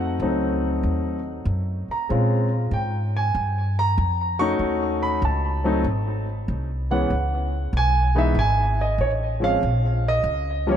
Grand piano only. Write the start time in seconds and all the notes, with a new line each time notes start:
Already playing: A3 C4 D#4 F#4 F#5
0.22 F#3 A3 C4 D#4
1.91 A#5
2.09 G#3 C4 C#4 F4
2.73 G5
3.17 G#5
3.79 A#5
4.39 A3 C#4 D#4 F#4 C#6
5.03 B5
5.25 A5
5.64 F#3 A3 C4 D#4
6.91 E3 G#3 B3 C#4 F#5
7.77 G#5
8.15 E3 G#3 B3 D#4 E5
8.39 G#5
8.81 D#5
9.01 C#5
9.40 F3 G#3 C4 C#4 F5
10.08 D#5
10.67 F3 G3 A#3 C#4
10.71 C#5